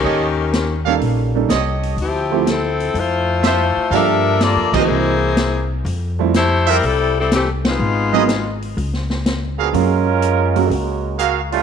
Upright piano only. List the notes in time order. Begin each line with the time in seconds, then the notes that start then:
0.86 G3 A#3 C#4 D#4 A4
1.35 G3 A#3 C#4 D#4 A4
2.31 F3 A3 C4 E4 G4
3.92 F3 G3 A#3 D4 G4
4.74 E3 G#3 A#3 C4 F#4
6.19 F3 G3 A3 C4 E4
8.13 F#3 G#3 A#3 B3 D#4
9.73 F#3 G#3 A#3 C#4 F4
10.55 F#3 G#3 A#3 C#4 F#4